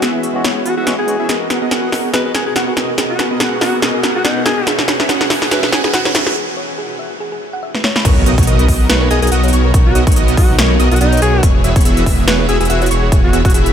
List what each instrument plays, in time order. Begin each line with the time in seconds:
Already playing: ambient pad E3 G#3 C#4 F#4
0.02 analog polysynth B3 E4 F#4 G#4 E5, alto saxophone F#4, snare, closed hi-hat
0.23 analog polysynth B3 E4 F#4 G#4 E5, closed hi-hat
0.34 tine electric piano G#3 B3 C#4 F#4
0.44 analog polysynth B3 E4 F#4 G#4 C#5, snare, closed hi-hat
0.65 analog polysynth B3 E4 F#4 G#4 B4, alto saxophone F#4, closed hi-hat
0.77 analog polysynth B3 E4 F#4 G#4 E5, alto saxophone F#4
0.86 tine electric piano G#3 B3 C#4 F#4, snare, closed hi-hat
0.98 analog polysynth B3 E4 F#4 G#4 F#5, alto saxophone G#4
1.07 tine electric piano G#3 B3 C#4 F#4, closed hi-hat
1.20 analog polysynth B3 E4 F#4 G#4 E5
1.29 ambient pad B2 A#3, analog polysynth B3 F#4 G#4 A#4 D#5, synth arpeggio sound G#4, snare, closed hi-hat, riser
1.50 analog polysynth B3 F#4 G#4 A#4 F#5, synth arpeggio sound B4, snare, closed hi-hat
1.62 analog polysynth B3 F#4 G#4 A#4 D#5
1.71 analog polysynth B3 F#4 G#4 A#4 F#5, synth arpeggio sound G#4, snare, closed hi-hat
1.92 analog polysynth B3 F#4 G#4 A#4 F#5, synth arpeggio sound D#5, snare, open hi-hat
2.13 analog polysynth B3 F#4 G#4 A#4 D#5, synth arpeggio sound G#4, alto saxophone B4, snare, closed hi-hat
2.25 synth arpeggio sound G#4, alto saxophone B4
2.35 analog polysynth B3 F#4 G#4 A#4 F#5, alto saxophone G#4, snare, closed hi-hat
2.46 analog polysynth B3 F#4 G#4 A#4 F#5, alto saxophone G#4, synth arpeggio sound G#4
2.56 analog polysynth B3 F#4 G#4 A#4 F#5, alto saxophone F#4, synth arpeggio sound F#5, snare, closed hi-hat
2.67 alto saxophone F#4, synth arpeggio sound B4
2.77 analog polysynth B3 F#4 G#4 A#4 D#5, snare, closed hi-hat
2.89 synth arpeggio sound G#4
2.98 analog polysynth B3 F#4 G#4 A#4 D#5, synth arpeggio sound G#4, snare, closed hi-hat
3.10 alto saxophone F#4
3.19 analog polysynth B3 F#4 G#4 A#4 F#5, synth arpeggio sound B4, snare, closed hi-hat
3.31 analog polysynth B3 F#4 G#4 A#4 D#5
3.40 analog polysynth B3 F#4 G#4 A#4 F#5, synth arpeggio sound G#4, snare, closed hi-hat
3.61 analog polysynth B3 F#4 G#4 A#4 F#5, alto saxophone F#4, synth arpeggio sound D#5, snare, open hi-hat
3.82 analog polysynth B3 F#4 G#4 A#4 D#5, synth arpeggio sound G#4, snare, closed hi-hat
3.94 synth arpeggio sound G#4
4.03 analog polysynth B3 F#4 G#4 A#4 F#5, snare, closed hi-hat
4.15 analog polysynth B3 F#4 G#4 A#4 F#5, alto saxophone F#4, synth arpeggio sound G#4
4.25 analog polysynth B3 F#4 G#4 A#4 F#5, alto saxophone D#4, synth arpeggio sound F#5, snare, closed hi-hat
4.36 synth arpeggio sound B4
4.46 analog polysynth B3 F#4 G#4 A#4 D#5, alto saxophone G#4, snare, closed hi-hat
4.58 synth arpeggio sound G#4
4.67 ambient pad E3 B3, analog polysynth C#4 F#4 G#4 B4 E5, synth arpeggio sound G#4, snare, closed hi-hat
4.79 snare
4.88 analog polysynth C#4 F#4 G#4 B4 F#5, synth arpeggio sound C#5, snare, closed hi-hat
5.00 analog polysynth C#4 F#4 G#4 B4 E5, snare
5.09 analog polysynth C#4 F#4 G#4 B4 F#5, synth arpeggio sound G#4, snare, closed hi-hat
5.21 snare
5.30 analog polysynth C#4 F#4 G#4 B4 F#5, synth arpeggio sound E5, snare, open hi-hat
5.42 snare
5.51 analog polysynth C#4 F#4 G#4 B4 E5, synth arpeggio sound G#4, alto saxophone B4, snare, closed hi-hat
5.63 synth arpeggio sound G#4, alto saxophone B4, snare
5.72 analog polysynth C#4 F#4 G#4 B4 F#5, alto saxophone G#4, snare, closed hi-hat
5.84 analog polysynth C#4 F#4 G#4 B4 F#5, alto saxophone G#4, synth arpeggio sound G#4, snare
5.94 analog polysynth C#4 F#4 G#4 B4 F#5, alto saxophone F#4, synth arpeggio sound F#5, snare, closed hi-hat
6.05 alto saxophone F#4, synth arpeggio sound C#5, snare
6.15 analog polysynth C#4 F#4 G#4 B4 E5, snare, closed hi-hat
6.26 synth arpeggio sound G#4, snare
6.36 synth arpeggio sound G#4
6.57 synth arpeggio sound C#5
6.78 synth arpeggio sound G#4
6.99 synth arpeggio sound E5
7.20 synth arpeggio sound G#4
7.32 synth arpeggio sound G#4
7.53 synth arpeggio sound F#5
7.63 synth arpeggio sound E5
7.75 synth arpeggio sound B4, snare
7.84 synth arpeggio sound C#5, snare
7.96 synth arpeggio sound B5, snare
8.05 detuned saw bass B1, analog polysynth B3 D#4 F#4 A#4 C#5, synth arpeggio sound A#4, synth pluck C#6, kick, closed hi-hat, crash, impact
8.26 detuned saw bass B1, analog polysynth B3 D#4 F#4 A#4 D#5, synth arpeggio sound C#5, synth pluck D#6, closed hi-hat
8.38 detuned saw bass B1, analog polysynth B3 D#4 F#4 A#4 C#5, synth pluck C#6, kick, closed hi-hat
8.43 closed hi-hat
8.47 detuned saw bass B1, analog polysynth B3 D#4 F#4 A#4 D#5, synth arpeggio sound A#4, synth pluck D#6, closed hi-hat
8.59 closed hi-hat
8.68 detuned saw bass B1, analog polysynth F#4, synth arpeggio sound D#5, synth pluck D#6, kick, open hi-hat
8.89 detuned saw bass B1, analog polysynth B3 D#4 F#4 A#4 C#5, synth arpeggio sound A#4, alto saxophone B4, synth pluck C#6, snare, closed hi-hat
9.01 synth arpeggio sound A#4, alto saxophone B4
9.11 detuned saw bass B1, analog polysynth B3 D#4 F#4 A#4 D#5, alto saxophone G#4, synth pluck D#6, closed hi-hat
9.22 detuned saw bass B1, analog polysynth B3 D#4 F#4 A#4 D#5, alto saxophone G#4, synth arpeggio sound A#4, synth pluck D#6, closed hi-hat
9.27 closed hi-hat
9.32 detuned saw bass B1, analog polysynth B3 D#4 F#4 A#4 D#5, alto saxophone F#4, synth arpeggio sound F#5, synth pluck D#6, closed hi-hat
9.43 alto saxophone F#4, synth arpeggio sound C#5, closed hi-hat
9.48 closed hi-hat
9.53 detuned saw bass B1, analog polysynth B3 D#4 F#4 A#4 C#5, synth pluck C#6, closed hi-hat
9.65 synth arpeggio sound A#4
9.74 detuned saw bass B1, analog polysynth B3 D#4 F#4 A#4 C#5, synth arpeggio sound A#4, synth pluck C#6, kick, closed hi-hat
9.86 alto saxophone F#4
9.95 detuned saw bass B1, analog polysynth B3 D#4 F#4 A#4 D#5, synth arpeggio sound C#5, synth pluck D#6, closed hi-hat
10.07 detuned saw bass B1, analog polysynth B3 D#4 F#4 A#4 C#5, synth pluck C#6, kick, closed hi-hat
10.12 closed hi-hat
10.16 detuned saw bass B1, analog polysynth B3 D#4 F#4 A#4 D#5, synth arpeggio sound A#4, synth pluck D#6, closed hi-hat
10.28 closed hi-hat
10.37 detuned saw bass B1, alto saxophone F#4, synth arpeggio sound D#5, synth pluck D#6, kick, open hi-hat
10.58 detuned saw bass B1, analog polysynth B3 D#4 F#4 A#4 C#5, synth arpeggio sound A#4, synth pluck C#6, snare, closed hi-hat
10.70 synth arpeggio sound A#4
10.80 detuned saw bass B1, analog polysynth B3 D#4 F#4 A#4 D#5, synth pluck D#6, closed hi-hat
10.91 detuned saw bass B1, analog polysynth B3 D#4 F#4 A#4 D#5, alto saxophone F#4, synth arpeggio sound A#4, synth pluck D#6, closed hi-hat
10.96 closed hi-hat
11.01 detuned saw bass B1, analog polysynth B3 D#4 F#4 A#4 D#5, alto saxophone D#4, synth arpeggio sound F#5, synth pluck D#6, closed hi-hat
11.13 synth arpeggio sound C#5, closed hi-hat
11.17 closed hi-hat
11.22 detuned saw bass B1, analog polysynth B3 D#4 F#4 A#4 C#5, alto saxophone G#4, synth pluck C#6, closed hi-hat
11.34 synth arpeggio sound A#4
11.43 detuned saw bass E1, synth arpeggio sound G#4, synth pluck C#6, kick, closed hi-hat
11.64 detuned saw bass E1, analog polysynth B3 E4 F#4 G#4 E5, synth arpeggio sound C#5, synth pluck E6, closed hi-hat
11.76 detuned saw bass E1, analog polysynth B3 E4 G#4 C#5, synth pluck C#6, kick, closed hi-hat
11.81 closed hi-hat
11.85 detuned saw bass E1, analog polysynth B3 E4 F#4 G#4 E5, synth arpeggio sound G#4, synth pluck E6, closed hi-hat
11.97 closed hi-hat
12.06 detuned saw bass E1, analog polysynth B3 E4 F#4 G#4 E5, synth arpeggio sound E5, synth pluck E6, kick, open hi-hat
12.27 detuned saw bass E1, analog polysynth B3 E4 F#4 G#4 C#5, synth arpeggio sound G#4, alto saxophone B4, synth pluck C#6, snare, closed hi-hat
12.39 synth arpeggio sound G#4, alto saxophone B4
12.49 detuned saw bass E1, analog polysynth B3 E4 F#4 G#4 E5, alto saxophone G#4, synth pluck E6, closed hi-hat
12.60 detuned saw bass E1, analog polysynth B3 E4 F#4 G#4 E5, alto saxophone G#4, synth arpeggio sound G#4, synth pluck E6, closed hi-hat
12.65 closed hi-hat
12.70 detuned saw bass E1, analog polysynth B3 E4 F#4 G#4 E5, alto saxophone F#4, synth arpeggio sound F#5, synth pluck E6, closed hi-hat
12.82 alto saxophone F#4, synth arpeggio sound C#5, closed hi-hat
12.86 closed hi-hat
12.91 detuned saw bass E1, analog polysynth B3 E4 F#4 G#4 C#5, synth pluck C#6, closed hi-hat
13.03 synth arpeggio sound G#4
13.12 detuned saw bass E1, analog polysynth G#4, synth arpeggio sound G#4, synth pluck C#6, kick, closed hi-hat
13.24 alto saxophone F#4
13.33 detuned saw bass E1, analog polysynth B3 E4 F#4 G#4 E5, synth arpeggio sound C#5, synth pluck E6, closed hi-hat
13.45 detuned saw bass E1, analog polysynth B3 E4 F#4 G#4 C#5, alto saxophone F#4, synth pluck C#6, kick, closed hi-hat
13.50 closed hi-hat
13.54 detuned saw bass E1, analog polysynth B3 E4 F#4 G#4 E5, alto saxophone F#4, synth arpeggio sound G#4, synth pluck E6, closed hi-hat
13.66 closed hi-hat